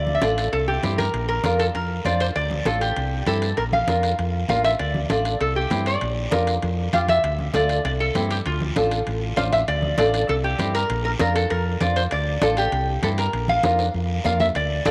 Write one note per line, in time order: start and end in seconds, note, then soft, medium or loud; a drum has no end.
0.00 0.16 D2 medium
0.00 0.16 D5 medium
0.07 high conga medium
0.15 0.22 E5 medium
0.22 0.47 A1 medium
0.22 0.43 D4 medium
0.22 0.44 F4 medium
0.22 0.44 A4 medium
0.22 0.50 D5 medium
0.22 high conga medium
0.22 high timbale medium
0.22 short guiro medium
0.38 high timbale medium
0.38 short guiro medium
0.52 0.77 C2 medium
0.52 0.67 A4 medium
0.52 high conga soft
0.52 high timbale medium
0.52 long guiro medium
0.68 0.99 G4 medium
0.83 1.08 G2 medium
0.83 1.04 C4 medium
0.83 1.05 E4 medium
0.83 1.05 G4 medium
0.83 high conga medium
0.83 high timbale medium
0.83 short guiro medium
0.98 1.27 A#4 medium
0.98 high conga medium
0.98 high timbale medium
0.98 short guiro medium
1.14 1.38 A#1 medium
1.14 high conga soft
1.14 high timbale medium
1.14 long guiro medium
1.29 1.59 A#4 medium
1.44 1.69 F2 medium
1.44 1.65 D4 medium
1.44 1.66 F4 medium
1.44 1.66 A#4 medium
1.44 high conga medium
1.44 high timbale medium
1.44 short guiro medium
1.59 1.65 A4 medium
1.59 high timbale medium
1.59 short guiro medium
1.75 1.99 F2 medium
1.75 2.03 A#4 medium
1.75 high conga soft
1.75 high timbale medium
1.75 long guiro medium
2.05 2.30 F2 medium
2.05 2.26 D4 medium
2.05 2.27 F4 medium
2.05 2.27 C5 medium
2.05 2.21 D5 medium
2.05 high conga medium
2.05 high timbale medium
2.05 short guiro medium
2.20 2.26 C5 medium
2.20 high timbale medium
2.20 short guiro medium
2.35 2.60 D2 medium
2.35 2.64 D5 medium
2.35 high conga soft
2.35 high timbale medium
2.35 long guiro medium
2.51 high conga medium
2.65 2.91 A1 medium
2.65 2.87 D4 medium
2.65 2.88 F4 medium
2.65 2.81 A4 medium
2.65 2.88 A4 medium
2.65 high conga medium
2.65 high timbale medium
2.65 short guiro medium
2.81 3.24 G4 medium
2.81 high timbale medium
2.81 short guiro medium
2.96 3.21 C2 loud
2.96 high conga soft
2.96 high timbale medium
2.96 long guiro medium
3.26 3.52 G2 medium
3.26 3.48 C4 medium
3.26 3.48 E4 medium
3.26 3.49 G4 medium
3.26 3.56 A4 medium
3.26 high conga medium
3.26 high timbale medium
3.26 short guiro medium
3.42 high timbale medium
3.42 short guiro medium
3.57 3.82 A#1 medium
3.57 3.63 A#4 medium
3.57 high conga soft
3.57 high timbale medium
3.57 long guiro medium
3.72 4.48 F5 medium
3.72 high conga medium
3.88 4.12 F2 medium
3.88 4.09 D4 medium
3.88 4.09 F4 medium
3.88 4.10 A#4 medium
3.88 high conga medium
3.88 high timbale medium
3.88 short guiro medium
4.03 high timbale medium
4.03 short guiro medium
4.18 4.43 F2 medium
4.18 high conga soft
4.18 high timbale medium
4.18 long guiro medium
4.49 4.74 A1 medium
4.49 4.70 D4 medium
4.49 4.71 F4 medium
4.49 4.71 A#4 medium
4.49 4.64 F5 medium
4.49 high conga medium
4.49 high timbale medium
4.49 low timbale medium
4.49 short guiro medium
4.64 4.69 E5 medium
4.64 high timbale medium
4.64 short guiro medium
4.79 5.04 D2 medium
4.79 5.08 D5 medium
4.79 high conga soft
4.79 high timbale medium
4.79 long guiro medium
4.95 high conga medium
5.09 5.34 A1 medium
5.09 5.31 D4 medium
5.09 5.31 F4 medium
5.09 5.31 A4 medium
5.09 5.41 D5 medium
5.09 high conga medium
5.09 high timbale medium
5.09 short guiro medium
5.25 high timbale medium
5.25 short guiro medium
5.41 5.65 C2 medium
5.41 5.55 A4 medium
5.41 high conga soft
5.41 high timbale medium
5.41 long guiro medium
5.56 5.84 G4 medium
5.70 5.96 G2 medium
5.70 5.92 C4 medium
5.70 5.92 E4 medium
5.70 5.92 G4 medium
5.70 high conga medium
5.70 high timbale medium
5.70 low timbale medium
5.70 short guiro medium
5.86 6.44 D5 medium
5.86 high timbale medium
5.86 short guiro medium
6.01 6.26 A#1 medium
6.01 high conga soft
6.01 high timbale medium
6.01 long guiro medium
6.31 6.57 F2 medium
6.31 6.53 D4 medium
6.31 6.53 F4 medium
6.31 6.53 A#4 medium
6.31 high conga medium
6.31 high timbale medium
6.31 short guiro medium
6.47 high timbale medium
6.47 short guiro medium
6.62 6.87 F2 medium
6.62 high conga soft
6.62 high timbale medium
6.62 long guiro medium
6.93 7.18 F2 medium
6.93 7.14 D4 medium
6.93 7.15 F4 medium
6.93 7.15 G4 medium
6.93 6.99 F5 medium
6.93 high conga medium
6.93 high timbale medium
6.93 short guiro medium
7.08 7.55 E5 medium
7.08 high conga medium
7.08 high timbale medium
7.08 short guiro medium
7.23 7.48 D2 medium
7.23 high conga soft
7.23 high timbale medium
7.23 long guiro medium
7.39 high conga medium
7.54 7.79 D2 medium
7.54 7.75 D4 medium
7.54 7.76 F4 medium
7.54 7.76 A4 medium
7.54 7.84 D5 medium
7.54 high conga medium
7.54 high timbale medium
7.54 short guiro medium
7.69 high timbale medium
7.69 short guiro medium
7.85 8.09 C2 medium
7.85 7.90 D5 medium
7.85 high conga soft
7.85 high timbale medium
7.85 long guiro medium
8.00 8.29 A4 medium
8.15 8.40 G2 medium
8.15 8.36 C4 medium
8.15 8.37 E4 medium
8.15 8.37 G4 medium
8.15 high conga medium
8.15 high timbale medium
8.15 low timbale medium
8.15 short guiro medium
8.31 8.36 G4 medium
8.31 high timbale medium
8.31 short guiro medium
8.45 8.70 D2 medium
8.45 9.34 F4 medium
8.45 high conga soft
8.45 high timbale medium
8.45 long guiro medium
8.61 high conga medium
8.76 9.01 A1 medium
8.76 8.97 D4 medium
8.76 8.98 F4 medium
8.76 8.98 A4 medium
8.76 high conga medium
8.76 high timbale medium
8.76 short guiro medium
8.91 high timbale medium
8.91 short guiro medium
9.06 9.31 A1 medium
9.06 high conga soft
9.06 high timbale medium
9.06 long guiro medium
9.36 9.62 A1 medium
9.36 9.58 D4 medium
9.36 9.58 F4 medium
9.36 9.59 C5 medium
9.36 9.42 F5 medium
9.36 high conga medium
9.36 high timbale medium
9.36 short guiro medium
9.52 9.58 E5 medium
9.52 high conga medium
9.52 high timbale medium
9.52 short guiro medium
9.67 9.92 D2 medium
9.67 9.97 D5 loud
9.67 high conga soft
9.67 high timbale medium
9.67 long guiro medium
9.82 high conga medium
9.98 10.23 A1 medium
9.98 10.19 D4 medium
9.98 10.20 F4 medium
9.98 10.20 A4 medium
9.98 10.26 D5 medium
9.98 high conga medium
9.98 high timbale medium
9.98 short guiro medium
10.14 high timbale medium
10.14 short guiro medium
10.28 10.53 C2 medium
10.28 10.34 A4 medium
10.28 high conga soft
10.28 high timbale medium
10.28 long guiro medium
10.44 10.75 G4 medium
10.59 10.84 G2 medium
10.59 10.80 C4 medium
10.59 10.81 E4 medium
10.59 10.81 G4 medium
10.59 high conga medium
10.59 high timbale medium
10.59 short guiro medium
10.75 11.04 A#4 medium
10.75 high timbale medium
10.75 short guiro medium
10.89 11.14 A#1 medium
10.89 high conga soft
10.89 high timbale medium
10.89 long guiro medium
11.05 11.10 A#4 medium
11.19 11.45 F2 medium
11.19 11.41 D4 medium
11.19 11.41 F4 medium
11.19 11.42 A#4 medium
11.19 11.35 A#4 medium
11.19 high conga medium
11.19 high timbale medium
11.19 short guiro medium
11.35 11.50 A4 medium
11.35 high timbale medium
11.35 short guiro medium
11.50 11.75 F2 medium
11.50 11.82 A#4 medium
11.50 high conga soft
11.50 high timbale medium
11.50 long guiro medium
11.81 12.05 F2 medium
11.81 12.02 D4 medium
11.81 12.02 F4 medium
11.81 12.03 C5 medium
11.81 11.97 D5 medium
11.81 high conga medium
11.81 high timbale medium
11.81 short guiro medium
11.96 12.01 C5 medium
11.96 high timbale medium
11.96 short guiro medium
12.11 12.36 D2 medium
12.11 12.43 D5 medium
12.11 high conga soft
12.11 high timbale medium
12.11 long guiro medium
12.42 12.66 A1 medium
12.42 12.63 D4 medium
12.42 12.63 F4 medium
12.42 12.64 A4 medium
12.42 12.57 A4 medium
12.42 high conga medium
12.42 high timbale medium
12.42 short guiro medium
12.57 13.00 G4 medium
12.57 high timbale medium
12.57 short guiro medium
12.72 12.97 C2 medium
12.72 high conga soft
12.72 high timbale medium
12.72 long guiro medium
13.02 13.27 G2 medium
13.02 13.24 C4 medium
13.02 13.24 E4 medium
13.02 13.24 G4 medium
13.02 13.09 A4 medium
13.02 high conga medium
13.02 high timbale medium
13.02 short guiro medium
13.18 13.47 A#4 medium
13.18 high timbale medium
13.18 short guiro medium
13.33 13.58 A#1 medium
13.33 high conga soft
13.33 high timbale medium
13.33 long guiro medium
13.48 14.24 F5 medium
13.48 high conga medium
13.63 13.88 F2 loud
13.63 13.85 D4 medium
13.63 13.85 F4 medium
13.63 13.85 A#4 medium
13.63 high conga medium
13.63 high timbale medium
13.63 short guiro medium
13.79 high timbale medium
13.79 short guiro medium
13.94 14.19 F2 loud
13.94 high conga soft
13.94 long guiro medium
14.24 14.49 F2 medium
14.24 14.46 D4 medium
14.24 14.46 F4 medium
14.24 14.46 A#4 medium
14.24 14.40 F5 medium
14.24 high conga medium
14.24 low timbale medium
14.24 short guiro medium
14.40 14.45 E5 medium
14.40 high conga medium
14.40 low timbale medium
14.40 short guiro medium
14.55 14.80 D2 medium
14.55 14.84 D5 medium
14.55 high conga soft
14.55 high timbale medium
14.55 long guiro medium
14.85 14.91 A1 loud
14.85 14.91 D4 medium
14.85 14.91 F4 medium
14.85 14.91 A4 medium
14.85 14.91 D5 medium
14.85 high conga medium
14.85 high timbale medium
14.85 short guiro medium